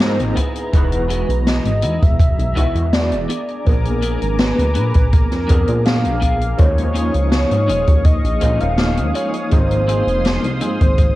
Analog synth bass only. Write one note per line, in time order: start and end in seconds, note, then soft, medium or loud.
0.00 0.20 G#2 loud
0.19 0.34 G#1 medium
0.73 1.25 E1 medium
1.29 1.60 B1 medium
1.65 1.84 G#1 medium
1.83 1.99 E2 medium
2.02 2.33 E1 medium
2.39 2.54 B1 medium
2.56 2.73 B1 loud
2.75 3.14 E2 loud
3.12 3.27 E1 medium
3.67 4.18 A#1 medium
4.22 4.53 G#1 medium
4.59 4.78 D2 medium
4.76 4.92 A#2 medium
4.95 5.26 A#1 medium
5.32 5.47 F2 medium
5.50 5.66 F2 loud
5.69 6.06 A#2 loud
6.05 6.55 A#1 medium
6.59 7.10 D#2 medium
7.14 7.45 C#2 medium
7.51 7.70 G#2 medium
7.69 7.85 D#1 medium
7.88 8.19 D#2 medium
8.24 8.39 A#1 medium
8.42 8.58 A#1 loud
8.61 9.00 D#1 loud
8.98 9.13 D#2 medium
9.52 10.03 G#1 loud
10.07 10.38 F1 medium
10.44 10.63 C2 medium
10.62 10.78 G#2 medium
10.81 11.12 G#1 medium